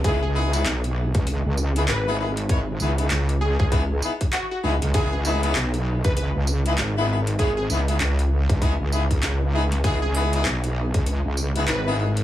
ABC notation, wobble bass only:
X:1
M:4/4
L:1/16
Q:"Swing 16ths" 1/4=98
K:C#m
V:1 name="Wobble bass" clef=bass
C,,4 B,,,3 C,,2 C,,3 G,,,4- | G,,,2 C,,2 C,,3 C,,3 z4 C,, C,, | C,,4 B,,,3 C,,2 C,,3 G,,,4- | G,,,2 C,,2 C,,3 C,,2 C,,3 C,,4 |
C,,4 B,,,3 C,,2 C,,3 G,,,4 |]